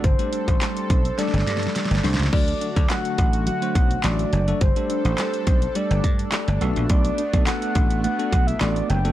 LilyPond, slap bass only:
\new Staff \with { instrumentName = "Slap bass" } { \clef bass \time 4/4 \key g \major \tempo 4 = 105 g,,16 r8 a,,16 r8 b,,8 r16 g,,16 g,8 r16 g,,16 c,16 cis,16 | d,8 r16 d,16 r8 a,,8. r16 b,,8 a,,8 fis,,8 | g,,16 r8 a,,16 r8 b,,8 r16 g,,16 g,8 r16 g,,16 b,,16 bes,,16 | b,,8 r16 b,,16 r8 a,,8. r16 b,,8 a,,8 fis,,8 | }